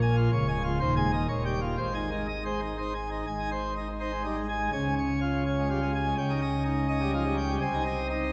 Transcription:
0.00 0.28 A#1 medium
0.00 0.28 A#2 medium
0.00 0.16 G#5 medium
0.17 0.30 F4 medium
0.32 0.79 C#1 loud
0.32 0.79 C#2 loud
0.32 0.47 C#5 medium
0.48 0.62 G#3 medium
0.48 0.62 G#5 loud
0.64 0.78 F4 medium
0.80 1.27 D#1 loud
0.80 1.27 D#2 loud
0.80 0.95 C5 medium
0.96 1.11 G#3 medium
0.96 1.11 G#5 loud
1.13 1.26 D#4 medium
1.29 1.77 D#1 medium
1.29 1.77 D#2 medium
1.29 1.43 C#5 medium
1.45 1.60 G3 medium
1.45 1.60 G5 medium
1.61 1.76 F4 medium
1.78 3.24 G#1 medium
1.78 3.24 G#2 medium
1.78 1.93 C5 medium
1.94 2.09 D#3 medium
1.94 2.10 G#5 medium
2.11 2.26 G#3 medium
2.11 2.27 D#4 medium
2.28 2.43 D#5 medium
2.45 2.60 G#3 medium
2.45 2.60 C5 medium
2.61 2.76 D#4 medium
2.78 2.93 D#4 medium
2.78 2.93 C5 medium
2.94 3.09 G#5 medium
3.11 3.25 D#4 medium
3.27 4.69 G#1 medium
3.27 4.69 G#2 medium
3.27 3.49 G#5 loud
3.39 3.51 D#4 medium
3.51 3.74 C5 medium
3.76 3.88 D#4 medium
4.00 4.11 D#4 medium
4.00 4.22 C5 medium
4.13 4.24 G#3 medium
4.24 4.35 G3 medium
4.24 4.46 D#4 medium
4.37 4.48 G#3 medium
4.49 4.70 G#5 medium
4.61 4.72 G#3 medium
4.72 6.14 C#2 medium
4.72 6.14 C#3 medium
4.72 4.94 G#5 loud
4.98 5.19 C#5 medium
5.21 5.43 F4 medium
5.47 5.68 C#5 medium
5.59 5.69 G#3 medium
5.70 5.80 G3 medium
5.70 5.91 F4 medium
5.82 5.93 G#3 medium
5.95 6.15 G#5 medium
6.07 6.17 G#3 medium
6.18 7.57 C#2 medium
6.18 7.57 C#3 medium
6.18 6.39 G5 loud
6.30 6.41 D#4 medium
6.42 6.63 D#5 medium
6.65 6.87 D#4 medium
6.89 7.00 D#4 medium
6.89 7.10 D#5 medium
7.01 7.12 G3 medium
7.14 7.24 F3 medium
7.14 7.35 D#4 medium
7.26 7.37 G3 medium
7.38 7.58 G5 medium
7.50 7.60 G3 medium
7.61 8.32 C2 loud
7.61 8.32 C3 medium
7.61 7.83 G#5 loud
7.74 7.85 D#4 medium
7.86 8.07 D#5 medium
8.10 8.31 D#4 medium

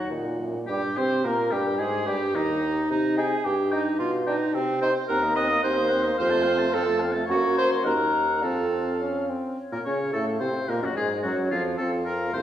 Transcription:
0.00 0.13 F#3 soft
0.00 0.40 D#4 medium
0.00 0.38 F#5 medium
0.11 0.59 A#2 medium
0.11 0.27 D#3 soft
0.26 0.42 A#2 soft
0.41 0.57 F#2 soft
0.56 0.69 A#2 soft
0.67 0.98 G2 medium
0.67 0.82 G3 medium
0.67 0.98 G4 medium
0.67 1.00 G4 medium
0.67 0.75 G5 medium
0.97 1.24 C3 medium
0.97 1.27 C4 medium
0.97 1.24 C5 medium
0.97 1.28 C5 medium
0.97 1.24 C6 medium
1.24 1.52 A#2 medium
1.24 1.54 A#3 medium
1.24 1.53 A#4 medium
1.24 1.55 A#4 medium
1.24 1.53 A#5 medium
1.51 1.81 G2 medium
1.51 1.82 G3 medium
1.51 1.80 G4 medium
1.51 1.79 G5 medium
1.78 2.09 G#2 medium
1.78 2.07 G#3 medium
1.78 2.10 G#4 medium
1.78 2.09 G#4 medium
1.78 2.06 G#5 medium
2.07 2.36 G2 medium
2.07 2.20 G3 medium
2.07 2.37 G4 medium
2.07 2.13 G5 medium
2.34 2.89 D#2 medium
2.34 2.89 D#3 medium
2.34 2.90 D#4 medium
2.34 2.91 D#4 medium
2.34 2.89 D#5 medium
2.89 3.36 C3 medium
2.89 3.17 D#4 medium
2.89 3.18 D#5 medium
3.17 3.27 D#4 medium
3.17 3.47 G#4 medium
3.17 3.28 G5 medium
3.17 3.47 G#5 medium
3.45 3.91 G2 medium
3.45 3.74 G4 medium
3.45 3.72 G5 medium
3.71 3.82 D#4 medium
3.71 3.98 D#4 medium
3.71 4.00 D#5 medium
3.71 3.81 G5 medium
3.99 4.45 B2 medium
3.99 4.11 F4 medium
3.99 4.28 F5 medium
4.27 4.36 D4 medium
4.27 4.56 D#4 medium
4.27 4.53 D#5 medium
4.27 4.36 G5 medium
4.54 5.00 C3 medium
4.54 4.81 C4 medium
4.54 4.60 C5 medium
4.81 4.92 D#4 medium
4.81 4.94 C5 medium
4.81 4.91 G5 medium
4.81 4.88 C6 medium
5.08 5.57 D#2 medium
5.08 5.25 C4 medium
5.08 5.35 A#4 loud
5.08 5.24 F#5 medium
5.08 5.37 A#5 medium
5.23 5.38 A#3 medium
5.23 5.38 D#5 medium
5.36 5.52 C4 medium
5.36 5.63 D#5 loud
5.36 5.50 F#5 medium
5.36 5.63 D#6 loud
5.48 5.63 A#3 medium
5.48 5.62 D#5 medium
5.62 6.12 D#2 medium
5.62 5.80 C4 medium
5.62 6.18 C5 loud
5.62 5.76 F#5 medium
5.62 6.17 C6 medium
5.74 5.89 D#5 medium
5.78 5.93 A#3 medium
5.88 6.04 F#5 medium
5.92 6.07 C4 medium
6.03 6.19 A#3 medium
6.03 6.17 D#5 medium
6.18 6.68 F2 medium
6.18 6.33 C4 medium
6.18 6.75 C5 loud
6.18 6.32 F5 medium
6.18 6.75 C6 medium
6.30 6.48 A3 medium
6.30 6.44 A5 medium
6.43 6.62 C4 medium
6.43 6.59 F5 medium
6.58 6.73 A3 medium
6.58 6.71 A5 medium
6.71 7.23 F2 medium
6.71 6.89 C4 medium
6.71 7.01 A4 loud
6.71 6.85 F5 medium
6.71 7.01 A5 medium
6.83 7.03 A3 medium
6.83 7.01 A5 medium
7.00 7.16 C4 medium
7.00 7.14 F5 medium
7.12 7.28 A3 medium
7.12 7.25 A5 medium
7.26 7.87 F#2 medium
7.26 7.81 A#3 medium
7.26 7.85 C#5 medium
7.26 7.35 F#5 medium
7.30 7.56 F#4 loud
7.56 7.70 C5 loud
7.56 7.84 C6 medium
7.84 8.45 D#2 medium
7.84 8.44 D#4 medium
7.84 8.42 A#4 medium
7.84 8.43 F#5 medium
7.84 8.44 A#5 medium
8.42 9.30 F2 medium
8.42 8.95 C4 medium
8.42 9.00 A4 medium
8.42 9.29 F5 medium
8.42 9.01 A5 medium
9.00 9.31 C#4 medium
9.30 9.58 C4 medium
9.58 10.09 C#5 soft
9.72 9.78 A#2 medium
9.72 9.85 A#3 medium
9.72 9.78 A#3 medium
9.72 9.79 A#4 medium
9.85 10.14 C#3 medium
9.85 10.13 C#4 medium
9.85 9.98 C#4 medium
9.85 10.12 C#5 medium
10.13 10.40 A2 medium
10.13 10.43 A3 medium
10.13 10.26 A3 medium
10.13 10.26 A4 medium
10.13 10.70 F5 medium
10.40 10.53 C3 medium
10.40 10.68 C4 medium
10.40 10.71 C4 medium
10.40 10.70 C5 medium
10.69 10.82 A#2 medium
10.69 10.82 A#3 medium
10.69 10.86 A#4 medium
10.69 11.24 D#5 medium
10.82 10.89 F#2 medium
10.82 10.97 F#3 medium
10.82 10.95 F#3 medium
10.82 10.96 F#4 medium
10.96 11.23 G#2 medium
10.96 11.23 G#3 medium
10.96 11.26 G#3 medium
10.96 11.09 G#4 medium
11.23 11.50 F#2 medium
11.23 11.50 F#3 medium
11.23 11.52 F#3 medium
11.23 11.36 F#4 medium
11.23 11.77 C#5 medium
11.51 11.78 F2 medium
11.51 11.78 F3 medium
11.51 11.63 F4 medium
11.77 12.29 F2 medium
11.77 12.29 C4 medium
11.77 12.42 F4 medium
11.77 11.90 A4 medium
11.77 12.42 F5 medium
12.06 12.32 A#4 medium
12.33 12.42 C2 medium
12.33 12.42 A3 medium
12.33 12.42 C5 medium

